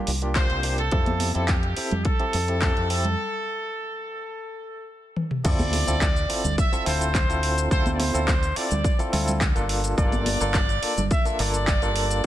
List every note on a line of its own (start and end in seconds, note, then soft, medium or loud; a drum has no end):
0.00 0.10 G4 medium
0.07 0.46 C2 medium
0.07 open hi-hat loud
0.22 0.61 A#3 medium
0.22 0.61 D4 medium
0.22 0.61 F4 medium
0.22 0.61 G4 medium
0.22 closed hi-hat soft
0.35 0.75 C5 loud
0.35 kick loud
0.35 clap loud
0.35 closed hi-hat medium
0.50 0.88 C2 medium
0.50 closed hi-hat soft
0.63 0.81 A#3 medium
0.63 0.81 D4 medium
0.63 0.81 F4 medium
0.63 0.81 G4 medium
0.63 open hi-hat loud
0.78 1.31 A4 loud
0.78 closed hi-hat soft
0.91 1.30 F2 loud
0.91 1.31 C4 loud
0.91 1.32 E4 medium
0.91 1.32 G4 medium
0.91 1.32 A4 loud
0.91 kick loud
0.91 closed hi-hat medium
1.06 closed hi-hat soft
1.06 high conga medium
1.20 open hi-hat loud
1.20 high conga medium
1.34 1.73 F2 medium
1.34 1.51 C4 medium
1.34 1.51 E4 medium
1.34 1.51 G4 medium
1.34 1.48 A4 loud
1.34 1.51 A4 medium
1.34 closed hi-hat soft
1.48 2.05 G4 medium
1.48 kick loud
1.48 clap loud
1.48 closed hi-hat medium
1.63 closed hi-hat soft
1.77 1.94 C4 medium
1.77 1.94 E4 medium
1.77 1.94 G4 medium
1.77 1.94 A4 medium
1.77 muted fingered electric bass stroke soft
1.77 open hi-hat medium
1.91 2.03 F2 medium
1.91 closed hi-hat soft
1.91 low conga medium
2.04 4.88 A4 loud
2.04 kick loud
2.04 closed hi-hat medium
2.20 2.36 C4 medium
2.20 2.36 E4 medium
2.20 2.36 G4 medium
2.20 2.36 A4 loud
2.20 closed hi-hat soft
2.33 2.72 F2 medium
2.33 open hi-hat loud
2.48 2.87 C4 medium
2.48 2.87 E4 medium
2.48 2.87 G4 medium
2.48 2.87 A4 medium
2.48 closed hi-hat soft
2.62 kick loud
2.62 clap loud
2.62 closed hi-hat medium
2.77 3.14 F2 medium
2.77 closed hi-hat soft
2.90 3.07 C4 medium
2.90 3.07 E4 medium
2.90 3.07 G4 medium
2.90 3.07 A4 medium
2.90 open hi-hat loud
3.05 closed hi-hat soft
3.05 low conga medium
5.16 high tom medium
5.31 mid tom medium
5.44 5.83 D2 loud
5.44 5.84 C4 medium
5.44 5.84 E4 medium
5.44 5.84 F4 medium
5.44 5.84 A4 loud
5.44 6.55 D5 loud
5.44 kick loud
5.44 closed hi-hat medium
5.44 crash loud
5.44 sub drop medium
5.44 shaker medium
5.59 closed hi-hat soft
5.59 high conga loud
5.59 shaker soft
5.73 open hi-hat loud
5.73 high conga loud
5.87 6.25 D2 medium
5.87 6.03 C4 medium
5.87 6.04 E4 medium
5.87 6.04 F4 medium
5.87 6.04 A4 medium
5.87 closed hi-hat soft
5.87 shaker medium
6.01 kick loud
6.01 clap loud
6.01 closed hi-hat medium
6.01 shaker medium
6.16 closed hi-hat soft
6.16 shaker soft
6.29 6.46 C4 medium
6.29 6.46 E4 medium
6.29 6.47 F4 medium
6.29 6.47 A4 medium
6.29 muted fingered electric bass stroke soft
6.29 open hi-hat loud
6.44 6.55 D2 medium
6.44 closed hi-hat soft
6.44 low conga medium
6.44 shaker medium
6.58 6.87 E5 loud
6.58 kick loud
6.58 closed hi-hat medium
6.58 shaker medium
6.72 6.84 C4 medium
6.72 6.84 E4 medium
6.72 6.84 F4 medium
6.72 6.84 A4 loud
6.72 closed hi-hat soft
6.72 shaker soft
6.85 7.25 D2 medium
6.85 7.12 C4 medium
6.85 7.13 E4 medium
6.85 7.13 F4 medium
6.85 7.13 A4 medium
6.85 7.67 C5 loud
6.85 open hi-hat loud
7.01 closed hi-hat soft
7.01 shaker medium
7.15 kick loud
7.15 clap loud
7.15 closed hi-hat medium
7.15 shaker medium
7.29 7.67 D2 medium
7.29 7.68 C4 loud
7.29 7.68 E4 medium
7.29 7.68 F4 medium
7.29 7.68 A4 loud
7.29 closed hi-hat soft
7.29 shaker soft
7.43 open hi-hat loud
7.58 closed hi-hat soft
7.58 shaker medium
7.71 8.10 D2 loud
7.71 8.11 C4 loud
7.71 8.11 E4 medium
7.71 8.11 F4 medium
7.71 8.11 A4 loud
7.71 7.91 C5 loud
7.71 kick loud
7.71 closed hi-hat medium
7.71 shaker medium
7.86 closed hi-hat soft
7.86 high conga medium
7.86 shaker soft
7.92 8.00 D5 medium
7.99 8.56 C5 loud
7.99 open hi-hat loud
7.99 high conga loud
8.14 8.52 D2 medium
8.14 8.30 C4 medium
8.14 8.30 E4 medium
8.14 8.30 F4 medium
8.14 8.30 A4 medium
8.14 closed hi-hat soft
8.14 shaker medium
8.28 kick loud
8.28 clap loud
8.28 closed hi-hat medium
8.28 shaker medium
8.43 closed hi-hat soft
8.43 shaker soft
8.56 8.73 C4 medium
8.56 8.73 E4 medium
8.56 8.73 F4 medium
8.56 8.73 A4 medium
8.56 9.13 D5 medium
8.56 muted fingered electric bass stroke soft
8.56 open hi-hat loud
8.71 8.82 D2 loud
8.71 closed hi-hat soft
8.71 low conga medium
8.71 shaker medium
8.84 kick loud
8.84 closed hi-hat medium
8.84 shaker medium
8.99 9.10 C4 medium
8.99 9.10 E4 medium
8.99 9.10 F4 medium
8.99 9.11 A4 loud
8.99 muted fingered electric bass stroke soft
8.99 closed hi-hat soft
8.99 shaker soft
9.12 9.51 D2 medium
9.12 9.39 C4 medium
9.12 9.39 E4 medium
9.12 9.39 F4 medium
9.12 9.39 A4 medium
9.12 open hi-hat loud
9.12 low conga medium
9.28 closed hi-hat soft
9.28 low conga medium
9.28 shaker medium
9.41 kick loud
9.41 clap loud
9.41 closed hi-hat medium
9.41 shaker medium
9.55 9.93 G1 medium
9.55 9.94 A#3 loud
9.55 9.94 D4 medium
9.55 9.95 F4 medium
9.55 9.95 A4 loud
9.55 closed hi-hat soft
9.55 shaker soft
9.69 open hi-hat loud
9.84 closed hi-hat soft
9.84 shaker medium
9.98 10.36 G1 loud
9.98 10.37 A#3 medium
9.98 10.37 D4 medium
9.98 10.38 F4 medium
9.98 10.38 A4 loud
9.98 11.07 D5 loud
9.98 kick loud
9.98 closed hi-hat medium
9.98 shaker medium
10.12 closed hi-hat soft
10.12 high conga loud
10.12 shaker soft
10.26 open hi-hat loud
10.26 high conga medium
10.40 10.78 G1 medium
10.40 10.57 A#3 medium
10.40 10.57 D4 medium
10.40 10.57 F4 medium
10.40 10.57 A4 loud
10.40 closed hi-hat soft
10.40 shaker medium
10.54 kick loud
10.54 clap loud
10.54 closed hi-hat medium
10.54 shaker medium
10.69 closed hi-hat soft
10.69 shaker soft
10.82 10.99 A#3 medium
10.82 11.00 D4 medium
10.82 11.00 F4 medium
10.82 11.00 A4 medium
10.82 muted fingered electric bass stroke soft
10.82 open hi-hat loud
10.97 11.08 G1 loud
10.97 closed hi-hat soft
10.97 low conga medium
10.97 shaker medium
11.11 11.40 E5 loud
11.11 kick loud
11.11 closed hi-hat medium
11.11 shaker medium
11.25 11.37 A#3 medium
11.25 11.37 D4 medium
11.25 11.37 F4 medium
11.25 11.37 A4 medium
11.25 closed hi-hat soft
11.25 shaker soft
11.39 11.78 G1 medium
11.39 11.66 A#3 medium
11.39 11.66 D4 medium
11.39 11.66 F4 medium
11.39 11.66 A4 medium
11.39 12.25 D5 loud
11.39 open hi-hat loud
11.54 closed hi-hat soft
11.54 shaker medium
11.67 kick loud
11.67 clap loud
11.67 closed hi-hat medium
11.67 shaker medium
11.82 12.20 G1 medium
11.82 12.21 A#3 loud
11.82 12.21 D4 medium
11.82 12.21 F4 medium
11.82 12.21 A4 loud
11.82 closed hi-hat soft
11.82 shaker soft
11.96 open hi-hat loud
12.11 closed hi-hat soft
12.11 shaker medium